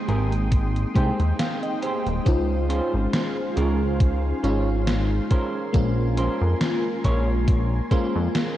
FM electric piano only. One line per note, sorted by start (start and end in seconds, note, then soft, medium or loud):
0.00 0.90 G#3 medium
0.00 0.91 A#3 medium
0.00 0.91 C4 medium
0.00 0.91 D#4 medium
0.00 0.92 G5 medium
0.94 2.21 G#3 medium
0.94 2.21 A#3 medium
0.94 2.22 C4 medium
0.94 2.22 D#4 medium
0.94 2.22 G5 medium
2.25 4.38 G#3 medium
2.25 4.39 C#4 medium
2.25 4.39 D#4 medium
2.25 4.40 F4 medium
2.25 4.39 C5 medium
4.43 5.28 G#3 medium
4.43 5.28 C#4 medium
4.43 5.28 D#4 medium
4.43 5.29 F4 medium
5.73 7.86 G#3 medium
5.73 7.86 A#3 medium
5.73 7.87 C#4 medium
5.73 7.87 F4 medium
7.91 8.57 G#3 medium
7.91 8.57 A#3 medium
7.91 8.57 C#4 medium
7.91 8.57 F4 medium